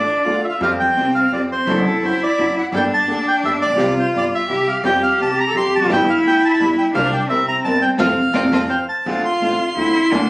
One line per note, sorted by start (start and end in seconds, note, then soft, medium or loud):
0.00 0.26 D4 medium
0.00 0.41 D5 medium
0.25 0.42 D2 soft
0.25 0.42 D2 medium
0.25 0.41 D3 medium
0.25 0.41 F3 soft
0.25 0.42 A3 soft
0.25 0.41 D4 soft
0.25 0.42 D4 soft
0.25 0.60 F4 medium
0.25 0.42 F4 soft
0.25 0.42 A4 soft
0.45 0.47 E5 medium
0.49 0.61 E5 medium
0.49 0.54 F5 medium
0.61 0.77 F2 loud
0.61 0.77 F2 medium
0.61 0.77 F3 medium
0.61 0.77 G3 medium
0.61 1.64 C4 medium
0.61 0.77 C4 medium
0.61 0.78 F4 medium
0.61 0.77 G4 medium
0.61 0.78 G4 medium
0.61 0.71 F5 medium
0.80 1.13 G5 medium
0.97 1.13 C2 medium
0.97 1.13 C3 medium
0.97 1.13 C4 soft
0.97 1.13 F4 soft
0.97 1.13 G4 soft
1.15 1.32 F5 medium
1.32 1.48 F2 medium
1.32 1.48 F3 medium
1.32 1.48 C4 soft
1.32 1.48 F4 soft
1.32 1.48 G4 medium
1.32 1.41 D5 medium
1.52 1.84 C5 medium
1.67 1.83 F#1 loud
1.67 1.83 F#2 medium
1.67 1.84 F#3 medium
1.67 1.83 C4 medium
1.67 1.83 D4 medium
1.67 2.69 E4 loud
1.67 1.83 F#4 medium
1.67 1.84 A4 medium
1.87 2.03 A4 medium
2.02 2.18 F#1 medium
2.02 2.18 F#2 medium
2.02 2.19 F#3 medium
2.02 2.18 C4 medium
2.02 2.18 D4 soft
2.02 2.18 F#4 medium
2.02 2.21 C5 medium
2.23 2.55 D5 medium
2.38 2.54 F#1 medium
2.38 2.54 F#2 medium
2.38 2.54 F#3 medium
2.38 2.53 C4 soft
2.38 2.53 D4 soft
2.38 2.53 F#4 medium
2.58 2.66 F#5 medium
2.72 2.88 G1 loud
2.72 2.89 G1 medium
2.72 2.89 G2 medium
2.72 2.89 G3 medium
2.72 2.88 A#3 medium
2.72 2.88 D4 medium
2.72 3.75 D4 loud
2.72 2.88 G4 medium
2.72 2.88 A4 medium
2.72 2.89 A4 medium
2.72 2.83 G5 loud
2.94 3.25 A5 medium
3.08 3.23 D2 medium
3.08 3.24 D2 medium
3.08 3.23 D3 medium
3.08 3.24 A#3 medium
3.08 3.24 G4 soft
3.08 3.24 A4 medium
3.28 3.36 G5 loud
3.43 3.59 G1 medium
3.43 3.58 G2 medium
3.43 3.58 A#3 soft
3.43 3.59 G4 medium
3.43 3.58 A4 medium
3.43 3.53 E5 loud
3.62 3.70 A1 medium
3.62 3.94 D5 medium
3.66 3.70 A1 medium
3.66 3.74 A#1 medium
3.71 3.75 A#1 medium
3.71 3.78 B1 medium
3.76 3.79 B1 medium
3.76 3.93 C2 medium
3.76 3.94 C2 loud
3.76 3.93 C3 medium
3.76 3.93 F3 medium
3.76 3.93 G3 medium
3.76 3.93 C4 medium
3.76 3.94 C4 medium
3.76 4.44 F4 loud
3.76 3.94 F4 medium
3.76 3.93 G4 medium
3.76 3.94 G4 medium
3.99 4.06 C5 medium
4.13 4.28 G1 medium
4.13 4.29 G1 medium
4.13 4.29 G2 medium
4.13 4.29 C4 medium
4.13 4.29 F4 soft
4.13 4.29 G4 medium
4.17 4.25 D5 medium
4.35 4.69 E5 loud
4.48 4.64 C2 medium
4.48 4.64 C3 medium
4.48 4.64 C4 soft
4.48 4.64 E4 soft
4.48 4.82 G4 loud
4.48 4.64 G4 soft
4.68 4.84 F5 medium
4.83 4.99 F2 loud
4.83 4.99 F2 medium
4.83 4.99 F3 medium
4.83 4.99 G3 medium
4.83 4.99 C4 medium
4.83 5.00 F4 medium
4.83 5.44 G4 loud
4.83 4.99 G4 medium
4.83 5.00 G4 medium
4.83 5.02 G5 loud
5.03 5.19 F5 loud
5.19 5.35 C2 medium
5.19 5.35 C3 medium
5.19 5.35 C4 medium
5.19 5.35 F4 soft
5.19 5.35 G4 medium
5.19 5.39 A5 loud
5.40 5.56 A#5 loud
5.48 5.57 A4 medium
5.54 5.70 F2 medium
5.54 5.70 F3 medium
5.54 5.70 C4 soft
5.54 5.70 F4 soft
5.54 5.70 G4 soft
5.54 5.91 G4 loud
5.54 5.74 C6 loud
5.76 5.81 E1 medium
5.76 5.82 E2 soft
5.76 5.91 A5 medium
5.81 5.86 F1 medium
5.81 5.86 F2 medium
5.81 5.90 F#2 medium
5.86 5.89 F#1 medium
5.86 6.05 G1 medium
5.86 6.05 G1 loud
5.86 6.05 G2 medium
5.86 6.05 F3 medium
5.86 6.05 B3 medium
5.86 6.05 D4 medium
5.86 6.93 E4 loud
5.86 6.05 F4 medium
5.90 6.05 G4 medium
5.90 6.08 G5 loud
6.10 6.17 F5 loud
6.24 6.39 D2 medium
6.24 6.40 D2 medium
6.24 6.39 D3 medium
6.24 6.40 B3 medium
6.24 6.41 F4 medium
6.24 6.41 G4 medium
6.24 6.44 G5 loud
6.45 6.48 A5 loud
6.45 6.52 B5 medium
6.54 6.61 A5 loud
6.59 6.74 G1 medium
6.59 6.75 G1 medium
6.59 6.74 G2 medium
6.59 6.75 B3 soft
6.59 6.75 F4 soft
6.59 6.75 G4 medium
6.59 6.68 B5 loud
6.78 6.86 G5 medium
6.93 7.10 C2 loud
6.93 7.10 C3 medium
6.93 7.09 F3 medium
6.93 7.09 A#3 medium
6.93 7.09 C4 medium
6.93 7.30 D4 loud
6.93 7.09 F4 medium
6.93 7.10 G4 loud
6.93 7.10 A#4 medium
6.93 7.11 F5 loud
7.13 7.21 G5 medium
7.29 7.44 C2 medium
7.29 7.45 C2 medium
7.29 7.44 C3 medium
7.29 7.98 C4 loud
7.29 7.44 C4 medium
7.29 7.44 E4 medium
7.29 7.44 A#4 medium
7.29 7.46 E5 loud
7.48 7.56 A#5 loud
7.64 7.79 G1 medium
7.64 7.80 G1 medium
7.64 7.79 G2 medium
7.64 7.79 C4 medium
7.64 7.79 E4 soft
7.64 7.79 A#4 medium
7.64 7.83 A5 loud
7.82 7.90 G5 medium
7.98 8.13 F2 loud
7.98 8.10 A2 loud
7.98 8.11 C3 loud
7.98 8.10 F3 loud
7.98 8.11 C4 medium
7.98 8.11 C4 loud
7.98 8.11 F4 loud
7.98 8.11 A4 loud
7.98 8.85 F5 loud
8.34 8.48 F2 loud
8.34 8.46 A2 loud
8.34 8.46 C3 loud
8.34 8.46 F3 loud
8.34 8.46 C4 loud
8.34 8.46 F4 loud
8.34 8.46 A4 loud
8.34 8.68 D5 loud
8.52 8.66 F2 loud
8.52 8.64 A2 medium
8.52 8.64 C3 medium
8.52 8.64 F3 medium
8.52 8.64 C4 medium
8.52 8.64 C4 loud
8.52 8.64 F4 loud
8.52 8.64 A4 loud
8.70 9.04 C5 medium
8.70 8.78 G5 medium
8.89 9.22 A5 medium
9.06 9.21 D2 loud
9.06 9.22 D2 medium
9.06 9.21 D3 loud
9.06 9.22 A3 medium
9.06 9.22 C4 medium
9.06 9.22 D4 medium
9.06 9.73 F4 loud
9.06 9.22 F4 medium
9.25 10.30 C6 loud
9.41 9.57 A1 medium
9.41 9.57 A2 medium
9.41 9.57 D3 medium
9.41 9.57 A3 soft
9.41 9.57 C4 soft
9.41 9.57 C4 medium
9.41 9.57 D4 soft
9.41 9.57 F4 medium
9.76 9.92 D2 medium
9.76 9.92 D3 medium
9.76 9.92 A3 soft
9.76 9.92 C4 soft
9.76 9.92 D4 soft
9.76 10.15 E4 loud
9.76 9.92 F4 medium
10.11 10.27 D2 loud
10.11 10.27 D3 medium
10.11 10.26 F3 medium
10.11 10.26 A#3 medium
10.11 10.27 A#3 medium
10.11 10.27 D4 medium
10.11 10.30 D4 loud
10.11 10.27 F4 medium